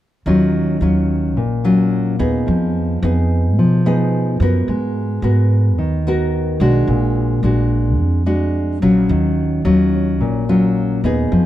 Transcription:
0.26 0.77 D#2 medium
0.26 1.34 D#3 soft
0.26 0.77 F#3 soft
0.26 0.77 C#4 soft
0.26 0.77 F4 medium
0.81 1.36 D#2 medium
0.81 1.36 F#3 soft
0.81 1.36 C#4 soft
0.81 1.37 F4 medium
1.36 2.15 A#1 medium
1.36 2.44 A#2 soft
1.64 2.15 F#3 soft
1.64 2.15 C#4 soft
1.64 2.15 F4 medium
2.19 2.45 D#2 medium
2.19 2.98 B3 soft
2.19 2.98 D#4 soft
2.19 2.98 G#4 medium
2.47 2.99 F2 medium
2.47 3.54 F3 soft
3.03 3.58 F2 medium
3.03 3.81 B3 soft
3.03 3.81 D#4 soft
3.03 3.82 G#4 soft
3.58 4.36 B2 medium
3.58 4.66 F3 soft
3.86 4.36 B3 medium
3.86 4.36 D#4 medium
3.86 4.37 G#4 medium
4.40 4.66 F#2 medium
4.40 5.19 B3 medium
4.40 5.19 F#4 soft
4.40 5.20 A#4 medium
4.68 5.19 G#2 medium
4.68 5.76 G#3 soft
5.22 5.77 G#2 medium
5.22 6.02 B3 soft
5.22 6.02 F#4 soft
5.22 6.02 A#4 medium
5.77 6.57 D#2 medium
5.77 6.86 D#3 medium
6.07 6.57 B3 medium
6.07 6.58 F#4 medium
6.07 6.58 A#4 medium
6.60 6.86 B1 medium
6.60 7.40 G#3 medium
6.60 7.40 D4 medium
6.60 7.40 F#4 medium
6.87 7.39 A#1 medium
6.87 7.96 A#2 soft
7.43 7.98 A#1 medium
7.43 8.23 G#3 soft
7.43 8.23 D4 soft
7.43 8.23 F#4 medium
7.98 8.78 F2 medium
8.26 8.78 G#3 soft
8.26 8.78 D4 medium
8.26 8.78 F#4 medium
8.82 9.08 A#1 medium
8.82 9.61 F#3 medium
8.82 9.61 C#4 medium
8.82 9.61 F4 medium
9.09 9.61 D#2 medium
9.09 10.18 D#3 soft
9.65 10.21 D#2 medium
9.65 10.44 F#3 soft
9.65 10.44 C#4 soft
9.65 10.44 F4 medium
10.20 11.00 A#1 medium
10.20 11.29 A#2 soft
10.49 11.00 F#3 medium
10.49 11.00 C#4 medium
10.49 11.00 F4 medium
11.04 11.29 D#2 medium
11.04 11.46 B3 medium
11.04 11.46 D#4 soft
11.04 11.46 G#4 medium
11.32 11.46 F2 medium
11.32 11.46 F3 soft

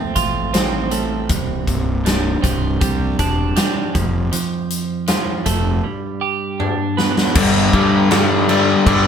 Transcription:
0.00 0.16 F2 medium
0.00 0.92 F3 medium
0.00 0.90 A3 medium
0.00 0.53 C4 medium
0.16 1.30 A1 medium
0.16 1.29 F4 medium
0.16 kick medium
0.16 closed hi-hat medium
0.54 3.22 C4 medium
0.54 snare loud
0.54 closed hi-hat medium
0.91 1.29 A3 medium
0.91 closed hi-hat medium
1.29 1.64 C1 loud
1.29 3.19 C2 medium
1.29 kick loud
1.29 closed hi-hat medium
1.67 2.35 C1 medium
1.67 kick medium
1.67 closed hi-hat medium
2.05 3.95 G2 medium
2.05 snare medium
2.05 closed hi-hat medium
2.43 2.77 C1 medium
2.43 3.95 C3 medium
2.43 kick medium
2.43 closed hi-hat medium
2.81 3.15 C2 medium
2.81 3.56 G3 medium
2.81 kick loud
2.81 closed hi-hat medium
3.19 3.53 E1 medium
3.19 3.95 D4 medium
3.19 kick medium
3.19 closed hi-hat medium
3.56 3.97 G3 medium
3.56 snare medium
3.56 closed hi-hat medium
3.94 4.29 F1 medium
3.94 4.31 F2 medium
3.94 kick medium
3.94 closed hi-hat medium
4.32 5.83 F2 medium
4.32 closed hi-hat medium
4.70 closed hi-hat medium
5.08 5.84 F3 medium
5.08 snare loud
5.08 closed hi-hat medium
5.46 5.80 F1 medium
5.46 5.84 A3 medium
5.46 kick medium
5.46 closed hi-hat medium
5.84 7.35 G2 medium
6.21 7.35 G4 medium
6.60 7.35 D4 medium
6.60 high tom medium
6.97 7.35 B3 medium
6.97 snare medium
7.17 snare medium
7.35 7.69 G1 loud
7.35 7.72 G2 medium
7.35 7.72 D3 loud
7.35 7.73 G3 loud
7.35 kick loud
7.35 crash loud
7.35 crash medium
7.73 8.74 G2 medium
7.73 8.10 G2 medium
7.73 8.10 D3 medium
7.73 8.11 G3 medium
7.73 kick medium
7.73 crash medium
8.11 8.47 G2 loud
8.11 8.48 D3 loud
8.11 8.48 G3 loud
8.11 snare loud
8.11 crash medium
8.48 8.85 G2 medium
8.48 8.85 D3 medium
8.48 8.86 G3 medium
8.48 crash medium
8.86 9.07 G1 loud
8.86 9.07 G2 medium
8.86 9.07 D3 medium
8.86 9.07 G3 medium
8.86 kick loud
8.86 crash medium

